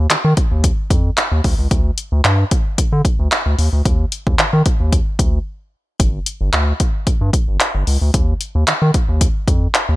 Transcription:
0.10 0.16 D#3 medium
0.10 clap loud
0.10 closed hi-hat medium
0.25 0.34 D#3 loud
0.37 kick loud
0.37 closed hi-hat medium
0.51 0.71 D#2 medium
0.64 kick medium
0.64 closed hi-hat loud
0.90 1.10 F2 medium
0.90 kick loud
0.90 closed hi-hat medium
1.18 clap loud
1.18 closed hi-hat medium
1.32 1.41 D#2 medium
1.44 1.55 D2 loud
1.44 kick medium
1.44 open hi-hat medium
1.59 1.68 C#2 medium
1.71 1.91 D2 loud
1.71 kick loud
1.71 closed hi-hat medium
1.98 closed hi-hat medium
2.12 2.21 D2 loud
2.25 2.44 G2 loud
2.25 clap loud
2.25 closed hi-hat medium
2.51 kick loud
2.51 closed hi-hat medium
2.78 2.84 D3 soft
2.78 kick medium
2.78 closed hi-hat loud
2.92 3.02 D3 medium
3.05 kick loud
3.05 closed hi-hat medium
3.19 3.29 D2 medium
3.32 clap loud
3.32 closed hi-hat medium
3.46 3.55 D2 medium
3.59 3.69 D#2 loud
3.59 open hi-hat medium
3.73 3.82 D2 medium
3.85 4.05 D#2 loud
3.85 kick loud
3.85 closed hi-hat medium
4.12 closed hi-hat medium
4.27 4.36 D#2 loud
4.27 kick medium
4.39 4.45 D#3 medium
4.39 clap loud
4.39 closed hi-hat medium
4.53 4.62 D#3 medium
4.66 kick loud
4.66 closed hi-hat medium
4.80 5.00 D#2 medium
4.93 kick loud
4.93 closed hi-hat loud
5.19 5.39 D2 medium
5.19 kick loud
5.19 closed hi-hat medium
6.00 6.19 G1 loud
6.00 kick loud
6.00 closed hi-hat medium
6.26 closed hi-hat medium
6.41 6.50 G1 medium
6.53 6.73 D2 medium
6.53 clap loud
6.53 closed hi-hat medium
6.80 kick loud
6.80 closed hi-hat medium
7.07 7.12 G2 medium
7.07 kick loud
7.07 closed hi-hat loud
7.21 7.30 G2 loud
7.33 kick loud
7.33 closed hi-hat medium
7.48 7.57 G1 medium
7.60 clap loud
7.60 closed hi-hat medium
7.75 7.84 G1 medium
7.87 7.98 C#2 loud
7.87 open hi-hat medium
8.02 8.11 D2 medium
8.14 8.34 D#2 loud
8.14 kick loud
8.14 closed hi-hat medium
8.41 closed hi-hat medium
8.55 8.64 D#2 loud
8.67 8.73 D#3 medium
8.67 clap loud
8.67 closed hi-hat medium
8.82 8.91 D#3 loud
8.94 kick loud
8.94 closed hi-hat medium
9.09 9.28 D#2 medium
9.21 kick loud
9.21 closed hi-hat loud
9.48 9.67 F2 medium
9.48 kick loud
9.48 closed hi-hat medium
9.75 clap loud
9.75 closed hi-hat medium
9.89 9.96 D#2 medium

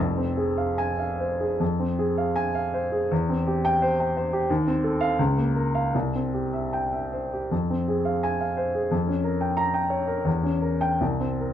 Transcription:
0.00 1.56 F1 medium
0.00 1.56 F2 medium
0.17 0.49 C4 soft
0.37 0.70 G#4 soft
0.57 0.91 F5 soft
0.78 1.12 G#5 medium
0.99 1.33 F5 soft
1.20 1.53 C5 soft
1.40 1.60 G#4 soft
1.60 3.07 F2 medium
1.80 2.10 C4 soft
1.99 2.29 G#4 soft
2.18 2.48 F5 medium
2.36 2.66 G#5 medium
2.55 2.85 F5 soft
2.74 3.03 C5 medium
2.92 3.11 G#4 soft
3.11 4.46 E2 medium
3.29 3.58 C4 soft
3.47 3.75 G4 medium
3.65 3.92 G5 medium
3.82 4.09 C5 medium
4.00 4.26 G5 medium
4.17 4.43 C5 medium
4.33 4.50 G4 medium
4.50 5.17 D#2 medium
4.67 4.94 C4 medium
4.84 5.12 A4 medium
5.01 5.18 F5 medium
5.19 5.92 C#2 medium
5.37 5.67 A#3 soft
5.56 5.86 A#4 soft
5.75 5.94 F5 medium
5.95 7.47 C2 medium
6.15 6.46 C4 soft
6.34 6.65 G4 soft
6.53 6.85 E5 soft
6.73 7.05 G5 medium
6.93 7.24 E5 soft
7.13 7.44 C5 soft
7.33 7.52 G4 soft
7.51 8.88 F2 medium
7.70 7.99 C4 soft
7.88 8.16 G#4 soft
8.05 8.33 F5 soft
8.23 8.51 G#5 medium
8.40 8.68 F5 soft
8.57 8.85 C5 soft
8.75 8.92 G#4 soft
8.91 10.22 F2 medium
9.07 9.34 C#4 soft
9.24 9.51 A#4 soft
9.41 9.68 G5 medium
9.57 9.84 A#5 medium
9.74 10.01 G5 medium
9.90 10.18 C#5 medium
10.07 10.25 A#4 soft
10.25 10.98 E2 medium
10.43 10.73 C#4 soft
10.62 10.93 A#4 soft
10.81 11.01 G5 medium
11.01 11.53 C2 medium
11.20 11.52 C4 soft
11.41 11.53 A#4 soft

